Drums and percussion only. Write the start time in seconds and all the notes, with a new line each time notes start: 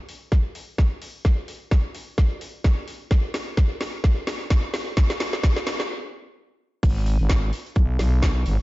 0.09 open hi-hat
0.32 kick, snare
0.55 open hi-hat
0.78 kick, snare
1.02 open hi-hat
1.25 kick, snare
1.48 open hi-hat
1.71 kick, snare
1.95 open hi-hat
2.18 kick, snare
2.41 open hi-hat
2.64 kick, snare
2.88 open hi-hat
3.11 kick, snare
3.34 snare, open hi-hat
3.57 kick, snare
3.81 snare, open hi-hat
4.04 kick, snare
4.27 snare, open hi-hat
4.50 kick, snare
4.74 snare, open hi-hat
4.97 kick, snare
5.10 snare
5.20 snare, open hi-hat
5.33 snare
5.43 kick, snare
5.57 snare
5.67 snare, open hi-hat
5.80 snare
6.83 kick, closed hi-hat, crash
6.96 snare
7.06 closed hi-hat, open hi-hat
7.29 kick, snare
7.53 closed hi-hat, open hi-hat
7.66 closed hi-hat
7.76 kick, closed hi-hat
7.99 snare, closed hi-hat, open hi-hat
8.22 kick, snare
8.35 snare
8.46 snare, closed hi-hat, open hi-hat